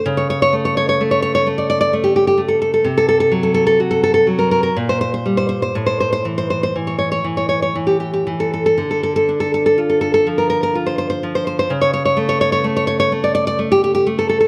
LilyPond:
\new Staff \with { instrumentName = "Nylon-string guitar" } { \time 3/4 \key a \phrygian \tempo 4 = 63 << { r32 cis''32 cis''32 cis''32 r32 cis''32 cis''32 cis''32 r32 cis''32 cis''32 cis''32 r32 d''32 d''32 d''32 r32 g'32 g'32 g'32 r32 a'32 a'32 a'32 | r32 a'32 a'32 a'32 r32 a'32 a'32 a'32 r32 a'32 a'32 a'32 r32 bes'32 bes'32 bes'32 r32 c''32 c''32 c''32 r32 c''32 c''32 c''32 | r32 c''32 c''32 c''32 r32 c''32 c''32 c''32 r32 cis''32 cis''32 cis''32 r32 cis''32 cis''32 cis''32 r32 g'32 g'32 g'32 r32 a'32 a'32 a'32 | r32 a'32 a'32 a'32 r32 a'32 a'32 a'32 r32 a'32 a'32 a'32 r32 bes'32 bes'32 bes'32 r32 c''32 c''32 c''32 r32 c''32 c''32 c''32 |
r32 cis''32 cis''32 cis''32 r32 cis''32 cis''32 cis''32 r32 cis''32 cis''32 cis''32 r32 d''32 d''32 d''32 r32 g'32 g'32 g'32 r32 a'32 a'32 a'32 | } \\ { cis8 a8 a8 a8 a8 a8 | c8 fis8 fis'8 fis8 bes,8 g8 | a,8 e8 e8 e8 e8 e8 | d8 d'8 f'8 f8 f'8 f8 |
cis8 a8 a8 a8 a8 a8 | } >> }